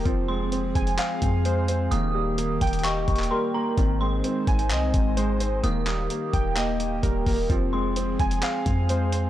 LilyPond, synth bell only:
\new Staff \with { instrumentName = "Synth bell" } { \time 4/4 \key ees \mixolydian \tempo 4 = 129 r8 c'''8 r2. | ees'''2 des'''4 c'''8 bes''8 | r8 c'''8 r2. | ees'''2 r2 |
r8 c'''8 r2. | }